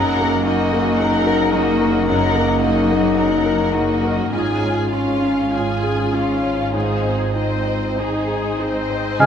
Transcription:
Already playing: F#1 F#2 F#3 A#3 D#4 A#4 F#5
0.20 A#3
0.44 A#3 D#4 F#4 D#5
0.73 A#3
0.97 F#3 D#4 A#4 F#5
1.27 A#4
1.52 A#3 D#4 F#4 D#5
1.81 A#4
2.06 F#2 F#3 A#4 F#5
2.35 A#3
2.62 A#3 D#4 F#4 D#5
2.92 A#3
3.17 F#3 D#4 A#4 F#5
3.46 A#4
3.73 A#3 D#4 F#4 D#5
4.04 A#4
4.31 G#1 G#2 C#4 F4 G#4 G#5
4.63 C#4
4.92 C#4 F4 F5
5.22 C#4
5.52 F4 G#4 G#5
5.83 G#4
6.13 C#4 F4 F5
6.43 C#5
6.73 G#2 C4 D#4 G#4 C5
7.04 C4
7.35 C4 D#4 C5 D#5
7.66 C4
7.96 D#4 G#4 C5
8.27 G#4
8.59 C4 D#4 C5 D#5
8.90 C5
9.19 C#2 C#3 G#3 F4 G#4 F5 G#5

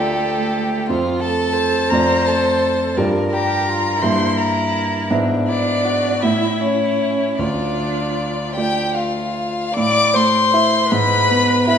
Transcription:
Already playing: D2 A3 F4 G4 A4 D5
0.89 F2 A3 F4 C5
1.20 A4 A5
1.53 C5
1.89 F2 A3 F4 A#4 D5 A#5
2.25 A4 A5
2.97 G2 G3 F4 A#4 D5
3.32 G4 A#4 A#5
3.69 F4
4.01 G2 A#3 E4 C5 E5 C6
4.37 A#4 A#5
5.10 G#2 B3 D4 E4 E5
5.46 D4 E4 D5
5.85 F#4
6.20 A2 A3 E4 E5
6.60 C#4 C#5
7.39 D2 D4 F4 D5
8.55 A3 F4 G4 D5 G5
8.94 F4 F5
9.74 A2 D5 D6
10.14 A3 C5 C6
10.54 E4 E5
10.88 G#2 B4 B5
11.30 B3
11.67 E4 B4 E5 B5

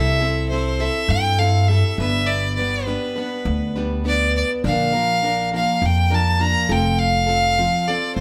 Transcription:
Already playing: C2 C3 G3 C4 E4 A4 E5
0.21 C4 E4 A4
0.49 G3 C4 A4 C5
0.53 E4
0.80 C4 E4 A4 E5
1.08 G2 G5
1.38 C4 E4 A4 F5
1.67 G3 C4 E4 A4 E5
1.98 G1 G2 D3 G3 B3 D4 B4 E5
2.27 D5
2.56 B3 D4 B4 D5
2.60 G3
2.85 G3 B3 D4 B4
3.16 G3 B3 D4 B4
3.45 D2
3.76 G3 B3 D4 B4
4.04 G3 B3 D4 B4
4.08 D5
4.37 D5
4.64 A#1 A#2 D3 F3 A#3 D4 A#4 F5
4.93 F3 A#3 D4 A#4
5.22 F3 A#3 D4 A#4
5.52 F3 A#3 D4 A#4 F5
5.82 F2 G5
6.10 F3 A#3 D4 A#4
6.14 A5
6.40 F3 A#3 D4 A#4 A#5
6.69 F1 F3 C4 F4 A4 G5
6.99 F5
7.27 C4 F4 A4
7.58 F3 C4 F4 A4
7.88 C4 F4 A4 D5
8.16 C2 C5

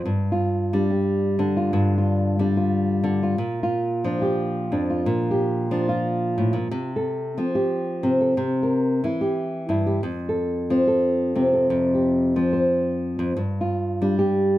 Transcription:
0.05 G2
0.32 F4
0.73 G3 D4
0.90 G4
1.39 D3 D4
1.57 F4
1.73 G2
1.98 F4
2.39 G3 D4
2.57 F4
3.04 D3 D4
3.23 F4
3.38 A#2
3.63 F4
4.04 F3 D4
4.22 G4
4.72 F2 D4
4.90 F4
5.06 A#2
5.31 G4
5.71 F3 D4
5.89 F4
6.38 A2
6.53 A#2
6.71 C3
6.96 A4
7.38 F3 C4
7.55 G4
8.03 C3 C4
8.21 A4
8.37 C3
8.63 A#4
9.04 E3 E4
9.21 G4
9.69 G2 E4
9.86 G4
10.03 F2
10.29 A4
10.70 F3 C4
10.88 A4
11.36 C3 C4
11.53 A4
11.70 F2
11.94 G4
12.36 F3 C4
12.53 C5
13.19 F2
13.37 G2
13.61 F4
14.02 G3 D4
14.19 G4

